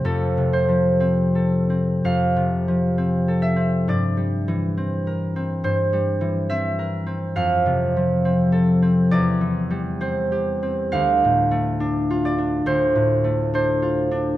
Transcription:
\new Staff \with { instrumentName = "Harp" } { \time 4/4 \key f \major \tempo 4 = 68 << { a'8 c''4. f''4. e''8 | d''2 c''4 e''4 | f''2 d''4 c''4 | f''4. d''8 c''4 c''4 | } \\ { \tuplet 3/2 { <f, a c' c''>8 c8 f8 c'8 a'8 c'8 f,8 c8 f8 c'8 a'8 c'8 } | \tuplet 3/2 { g,8 g8 e8 c'8 bes'8 c'8 g,8 g8 e8 c'8 bes'8 c'8 } | \tuplet 3/2 { f,8 c8 f8 c'8 a'8 c'8 e,8 e8 g8 c'8 g'8 c'8 } | \tuplet 3/2 { d,8 a,8 a8 d'8 f'8 d'8 d,8 a,8 a8 d'8 f'8 d'8 } | } >> }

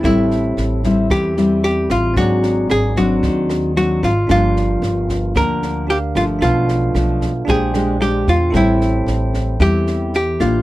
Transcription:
<<
  \new Staff \with { instrumentName = "Tine electric piano" } { \time 4/4 \key a \phrygian \tempo 4 = 113 <c' g' a' e''>1 | <bis fis' gis' d''>1 | <d' g' bes' f''>2. <d' g' bes' f''>4 | <d' a' b' f''>2 <d' aes' c'' g''>2 |
<e' a' c'' g''>1 | }
  \new Staff \with { instrumentName = "Hollow-body jazz guitar" } { \time 4/4 \key a \phrygian e'2 g'4 g'8 f'8 | fis'4 gis'8 fis'4. fis'8 f'8 | f'2 bes'4 g'8 f'8 | f'2 aes'4 g'8 f'8 |
e'2 g'4 g'8 f'8 | }
  \new Staff \with { instrumentName = "Nylon-string guitar" } { \time 4/4 \key a \phrygian << { <g c' e'>4. <g c' e'>4 <g c' e'>4. | <fis bis d'>4. <fis bis d'>4. <fis bis d'>8 r8 | <f bes d'>2 <f bes d'>4 r8 <f a d'>8~ | <f a d'>4 <f a d'>8 r8 <aes d' g'>8 <aes d' g'>8 <aes d' g'>8 r8 |
<g c' e'>2 <g c' e'>4 r8 <bes d' g'>8 | } \\ { a,2 e2 | gis,2 dis2 | g,2 d2 | b,2 bes,2 |
a,2 e2 | } >> }
  \new Staff \with { instrumentName = "Upright bass" } { \clef bass \time 4/4 \key a \phrygian a,,4 a,,4 e,4. a,,8 | gis,,4 gis,,4 dis,4. gis,,8 | g,,4 g,,4 d,4. g,,8 | b,,4 b,,4 bes,,4. e,8 |
a,,4 a,,4 e,4. a,,8 | }
  \new DrumStaff \with { instrumentName = "Drums" } \drummode { \time 4/4 <bd ss sn>8 sn8 sn8 <bd sn>8 <bd ss sn>8 sn8 sn8 <bd ss sn>8 | <bd sn>8 sn8 <ss sn>8 <bd sn>8 <bd sn>8 <ss sn>8 sn8 <bd sn>8 | <bd ss sn>8 sn8 sn8 <bd sn>8 <bd ss sn>8 sn8 sn8 <bd ss sn>8 | <bd sn>8 sn8 <ss sn>8 <bd sn>8 <bd sn>8 <ss sn>8 sn8 <bd sn>8 |
<bd ss sn>8 sn8 sn8 <bd sn>8 <bd ss sn>8 sn8 sn8 <bd ss sn>8 | }
>>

